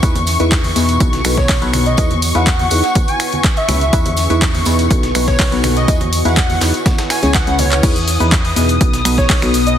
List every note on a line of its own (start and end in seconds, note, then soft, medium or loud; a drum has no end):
0.00 0.37 E2 loud
0.00 0.16 E3 medium
0.00 0.42 C#4 medium
0.00 0.16 D#4 medium
0.00 0.16 E4 medium
0.00 1.00 E4 medium
0.00 0.42 G#4 medium
0.00 0.16 G#4 medium
0.00 0.16 B4 loud
0.00 0.42 E5 medium
0.00 7.84 C#6 medium
0.00 kick loud
0.00 closed hi-hat medium
0.00 tambourine medium
0.15 closed hi-hat soft
0.15 tambourine soft
0.15 high conga medium
0.20 1.40 B4 medium
0.20 1.40 F#5 medium
0.27 snare soft
0.27 open hi-hat loud
0.27 tambourine medium
0.40 0.74 E2 loud
0.40 0.60 E3 medium
0.40 0.60 D#4 medium
0.40 0.60 E4 medium
0.40 0.60 G#4 medium
0.40 0.60 B4 loud
0.40 1.40 G#5 medium
0.40 closed hi-hat soft
0.40 tambourine soft
0.52 kick loud
0.52 snare loud
0.52 clap loud
0.52 closed hi-hat medium
0.52 tambourine medium
0.64 open hi-hat medium
0.64 tambourine soft
0.64 high conga medium
0.76 0.98 E2 loud
0.76 0.97 B2 medium
0.76 0.97 D#4 medium
0.76 0.97 E4 medium
0.76 0.97 G#4 medium
0.76 0.97 B4 medium
0.76 snare medium
0.76 open hi-hat loud
0.76 tambourine medium
0.89 closed hi-hat soft
0.89 tambourine soft
1.00 1.22 B1 loud
1.00 1.21 B2 medium
1.00 2.37 B3 medium
1.00 1.21 D#4 medium
1.00 1.21 F#4 medium
1.00 1.21 A4 medium
1.00 1.21 B4 medium
1.00 kick loud
1.00 closed hi-hat medium
1.00 tambourine medium
1.00 high conga medium
1.06 2.37 F#4 medium
1.06 2.37 C#5 medium
1.13 snare medium
1.13 closed hi-hat soft
1.13 tambourine soft
1.24 1.59 B1 loud
1.24 1.59 B2 medium
1.24 1.59 D#4 medium
1.24 1.59 F#4 medium
1.24 1.59 A4 medium
1.24 1.59 B4 medium
1.24 finger snap medium
1.24 snare soft
1.24 open hi-hat loud
1.24 tambourine medium
1.37 1.53 C#5 medium
1.37 2.37 D#5 medium
1.37 kick medium
1.37 snare medium
1.37 closed hi-hat soft
1.37 tambourine soft
1.37 high conga medium
1.49 kick loud
1.49 snare loud
1.49 clap loud
1.49 closed hi-hat medium
1.49 open hi-hat medium
1.49 tambourine soft
1.62 1.96 B1 loud
1.62 1.95 B2 medium
1.62 1.95 D#4 medium
1.62 1.95 F#4 medium
1.62 1.95 A4 medium
1.62 1.95 B4 loud
1.62 closed hi-hat soft
1.62 tambourine soft
1.73 finger snap medium
1.73 open hi-hat loud
1.73 tambourine medium
1.73 high conga medium
1.86 2.02 D#5 medium
1.86 closed hi-hat soft
1.86 tambourine soft
1.97 2.32 E2 loud
1.97 2.11 E3 medium
1.97 2.11 D#4 medium
1.97 2.11 E4 medium
1.97 3.35 E4 medium
1.97 2.11 G#4 medium
1.97 2.11 B4 medium
1.97 kick loud
1.97 closed hi-hat medium
1.97 tambourine soft
1.97 tambourine medium
2.09 3.35 G#5 medium
2.09 closed hi-hat soft
2.09 tambourine soft
2.09 high conga medium
2.22 3.35 B4 medium
2.22 open hi-hat loud
2.22 tambourine medium
2.34 2.69 E2 loud
2.34 2.47 E3 medium
2.34 2.47 D#4 medium
2.34 2.47 E4 medium
2.34 2.47 G#4 medium
2.34 2.47 B4 loud
2.34 2.69 F#5 medium
2.34 closed hi-hat soft
2.34 tambourine soft
2.42 3.35 F#5 medium
2.46 kick loud
2.46 snare loud
2.46 clap loud
2.46 closed hi-hat medium
2.46 tambourine soft
2.46 tambourine medium
2.59 open hi-hat medium
2.59 tambourine soft
2.59 high conga medium
2.70 2.82 E2 loud
2.70 2.84 D#4 medium
2.70 2.84 E4 medium
2.70 2.84 G#4 medium
2.70 2.84 B4 medium
2.70 2.79 F#5 medium
2.70 open hi-hat loud
2.70 tambourine medium
2.83 2.91 F#5 medium
2.83 snare soft
2.83 closed hi-hat soft
2.83 tambourine soft
2.95 4.33 C#4 medium
2.95 kick loud
2.95 closed hi-hat medium
2.95 tambourine soft
2.95 tambourine medium
2.95 high conga medium
3.08 3.24 G#5 medium
3.08 closed hi-hat soft
3.08 tambourine soft
3.12 4.32 G#4 medium
3.17 4.32 E5 medium
3.17 finger snap medium
3.17 open hi-hat loud
3.17 tambourine medium
3.32 closed hi-hat soft
3.32 tambourine soft
3.32 high conga medium
3.44 kick loud
3.44 snare loud
3.44 clap loud
3.44 closed hi-hat medium
3.44 tambourine medium
3.44 tambourine soft
3.56 3.98 E5 medium
3.56 closed hi-hat soft
3.56 tambourine soft
3.68 3.91 C#2 loud
3.68 3.82 C#4 medium
3.68 3.82 E4 medium
3.68 3.82 G#4 medium
3.68 3.82 B4 medium
3.68 finger snap medium
3.68 open hi-hat loud
3.68 tambourine medium
3.68 high conga medium
3.81 closed hi-hat soft
3.81 tambourine soft
3.93 4.28 E2 loud
3.93 4.06 E3 medium
3.93 4.06 D#4 medium
3.93 4.06 E4 medium
3.93 4.91 E4 medium
3.93 4.06 G#4 medium
3.93 4.06 B4 loud
3.93 kick loud
3.93 closed hi-hat loud
3.93 tambourine soft
3.93 tambourine medium
3.97 5.30 B4 medium
4.05 closed hi-hat soft
4.05 tambourine soft
4.05 high conga medium
4.17 snare soft
4.17 open hi-hat loud
4.17 tambourine medium
4.30 4.64 E2 loud
4.30 4.51 E3 medium
4.30 4.51 D#4 medium
4.30 4.51 E4 medium
4.30 4.51 G#4 medium
4.30 4.51 B4 loud
4.30 closed hi-hat soft
4.30 tambourine soft
4.37 5.30 F#5 medium
4.37 5.30 G#5 medium
4.42 kick loud
4.42 snare loud
4.42 clap loud
4.42 closed hi-hat loud
4.42 tambourine medium
4.42 tambourine soft
4.54 open hi-hat medium
4.54 tambourine soft
4.54 high conga medium
4.65 4.88 E2 loud
4.65 4.87 B2 medium
4.65 4.87 D#4 medium
4.65 4.87 E4 medium
4.65 4.87 G#4 medium
4.65 4.87 B4 medium
4.65 snare medium
4.65 open hi-hat loud
4.65 tambourine medium
4.79 closed hi-hat soft
4.79 tambourine soft
4.91 5.13 B1 loud
4.91 5.11 B2 medium
4.91 6.28 B3 medium
4.91 5.11 D#4 medium
4.91 5.11 F#4 medium
4.91 5.11 A4 medium
4.91 5.11 B4 medium
4.91 kick loud
4.91 closed hi-hat medium
4.91 tambourine medium
4.91 high conga medium
4.95 6.28 F#4 medium
5.01 6.28 C#5 medium
5.01 snare medium
5.01 closed hi-hat soft
5.01 tambourine soft
5.15 5.50 B1 loud
5.15 5.49 B2 medium
5.15 5.49 D#4 medium
5.15 5.49 F#4 medium
5.15 5.49 A4 medium
5.15 5.49 B4 medium
5.15 finger snap medium
5.15 snare soft
5.15 open hi-hat loud
5.15 tambourine medium
5.28 5.43 C#5 medium
5.28 kick medium
5.28 snare medium
5.28 closed hi-hat soft
5.28 tambourine soft
5.28 high conga medium
5.35 6.28 D#5 medium
5.39 kick loud
5.39 snare loud
5.39 clap loud
5.39 closed hi-hat medium
5.39 open hi-hat medium
5.52 5.86 B1 loud
5.52 5.85 B2 medium
5.52 5.85 D#4 medium
5.52 5.85 F#4 medium
5.52 5.85 A4 medium
5.52 5.85 B4 loud
5.52 closed hi-hat soft
5.52 tambourine soft
5.63 finger snap medium
5.63 open hi-hat loud
5.63 tambourine medium
5.63 high conga medium
5.76 5.92 D#5 medium
5.76 closed hi-hat soft
5.76 tambourine soft
5.88 6.23 E2 loud
5.88 6.02 E3 medium
5.88 6.02 D#4 medium
5.88 7.25 E4 medium
5.88 6.02 E4 medium
5.88 6.02 G#4 medium
5.88 6.02 B4 medium
5.88 kick loud
5.88 closed hi-hat loud
5.88 tambourine medium
5.95 7.25 F#5 medium
6.00 7.25 B4 medium
6.00 closed hi-hat soft
6.00 tambourine soft
6.00 high conga medium
6.12 open hi-hat loud
6.12 tambourine medium
6.25 6.59 E2 loud
6.25 6.38 E3 medium
6.25 6.38 D#4 medium
6.25 6.38 E4 medium
6.25 6.38 G#4 medium
6.25 6.38 B4 loud
6.25 6.59 F#5 medium
6.25 closed hi-hat soft
6.25 tambourine soft
6.32 7.25 G#5 medium
6.37 kick loud
6.37 snare loud
6.37 clap loud
6.37 closed hi-hat loud
6.37 tambourine medium
6.50 open hi-hat medium
6.50 tambourine soft
6.50 high conga medium
6.61 6.72 E2 loud
6.61 6.75 D#4 medium
6.61 6.75 E4 medium
6.61 6.75 G#4 medium
6.61 6.75 B4 medium
6.61 snare loud
6.61 clap soft
6.61 open hi-hat loud
6.61 tambourine medium
6.74 closed hi-hat soft
6.74 tambourine soft
6.86 7.83 C#4 medium
6.86 kick loud
6.86 snare loud
6.86 closed hi-hat medium
6.86 tambourine medium
6.86 high conga loud
6.98 snare loud
6.98 closed hi-hat soft
6.98 tambourine medium
6.98 tambourine soft
7.10 7.18 G#5 medium
7.10 finger snap medium
7.10 snare loud
7.10 open hi-hat loud
7.10 tambourine medium
7.22 7.45 C#2 loud
7.22 7.35 C#3 medium
7.22 7.35 C#4 medium
7.22 7.35 E4 medium
7.22 7.35 G#4 medium
7.22 7.35 C#5 loud
7.22 7.30 G#5 medium
7.22 closed hi-hat soft
7.22 tambourine soft
7.22 high conga medium
7.34 7.43 F#5 medium
7.34 kick loud
7.34 snare loud
7.34 clap loud
7.34 closed hi-hat medium
7.34 tambourine medium
7.47 7.81 C#2 loud
7.47 7.60 C#3 medium
7.47 7.60 C#4 medium
7.47 7.60 E4 medium
7.47 7.60 G#4 medium
7.47 7.60 B4 loud
7.47 7.55 F#5 medium
7.47 closed hi-hat soft
7.47 tambourine soft
7.58 7.83 C#5 medium
7.58 open hi-hat loud
7.58 tambourine medium
7.58 high conga medium
7.71 clap medium
7.71 closed hi-hat soft
7.71 tambourine soft
7.71 tambourine medium
7.83 8.18 E2 loud
7.83 7.97 E3 medium
7.83 7.97 D#4 medium
7.83 7.97 E4 medium
7.83 7.97 G#4 medium
7.83 7.97 B4 loud
7.83 9.78 D#6 medium
7.83 kick loud
7.83 closed hi-hat loud
7.83 crash loud
7.83 tambourine medium
7.83 shaker soft
7.96 closed hi-hat soft
7.96 shaker soft
8.08 snare soft
8.08 open hi-hat loud
8.08 tambourine medium
8.08 shaker medium
8.20 8.54 E2 loud
8.20 8.41 E3 medium
8.20 8.41 D#4 medium
8.20 8.41 E4 medium
8.20 8.41 G#4 medium
8.20 8.41 B4 loud
8.20 snare soft
8.20 closed hi-hat soft
8.20 shaker soft
8.32 kick loud
8.32 snare loud
8.32 clap loud
8.32 closed hi-hat loud
8.32 tambourine medium
8.32 shaker soft
8.45 open hi-hat medium
8.56 8.78 E2 loud
8.56 8.77 B2 medium
8.56 8.77 D#4 medium
8.56 8.77 E4 medium
8.56 8.77 G#4 medium
8.56 8.77 B4 medium
8.56 snare medium
8.56 open hi-hat loud
8.56 tambourine medium
8.56 shaker medium
8.69 closed hi-hat soft
8.69 shaker soft
8.81 9.03 B1 loud
8.81 9.02 B2 medium
8.81 9.02 D#4 medium
8.81 9.02 F#4 medium
8.81 9.02 A4 medium
8.81 9.02 B4 medium
8.81 kick loud
8.81 closed hi-hat loud
8.81 tambourine medium
8.81 shaker soft
8.94 snare medium
8.94 closed hi-hat soft
8.94 shaker soft
9.05 9.40 B1 loud
9.05 9.39 B2 medium
9.05 9.39 D#4 medium
9.05 9.39 F#4 medium
9.05 9.39 A4 medium
9.05 9.39 B4 medium
9.05 finger snap medium
9.05 snare soft
9.05 open hi-hat loud
9.05 tambourine medium
9.05 shaker medium
9.18 9.33 C#5 medium
9.18 kick medium
9.18 snare medium
9.18 closed hi-hat soft
9.18 shaker soft
9.30 kick loud
9.30 snare loud
9.30 clap loud
9.30 closed hi-hat medium
9.30 open hi-hat medium
9.30 shaker soft
9.42 9.76 B1 loud
9.42 9.76 B2 loud
9.42 9.76 D#4 medium
9.42 9.76 F#4 medium
9.42 9.76 A4 medium
9.42 9.76 B4 loud
9.42 finger snap medium
9.42 closed hi-hat soft
9.42 shaker soft
9.54 open hi-hat loud
9.54 tambourine medium
9.54 shaker medium
9.67 9.78 D#5 medium
9.67 closed hi-hat soft
9.67 shaker soft